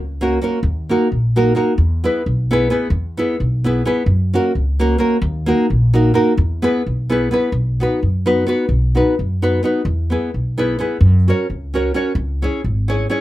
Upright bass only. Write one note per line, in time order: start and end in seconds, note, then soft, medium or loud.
0.00 0.36 C#2 medium
0.63 0.92 D#2 medium
1.12 1.51 A#1 medium
1.78 2.07 E2 medium
2.26 2.65 B1 medium
2.90 3.20 E2 medium
3.40 3.80 B1 medium
4.06 4.36 F#2 medium
4.55 4.95 C#2 medium
5.22 5.51 D#2 loud
5.70 6.10 A#1 medium
6.37 6.67 E2 medium
6.86 7.26 B1 medium
7.52 7.82 B1 medium
8.02 8.42 F#2 medium
8.69 8.99 B1 medium
9.19 9.59 F#2 medium
9.85 10.15 E2 medium
10.34 10.74 B1 medium
11.01 11.30 F#2 medium
11.50 11.89 C#2 medium
12.15 12.45 C#2 medium
12.64 13.04 G#1 medium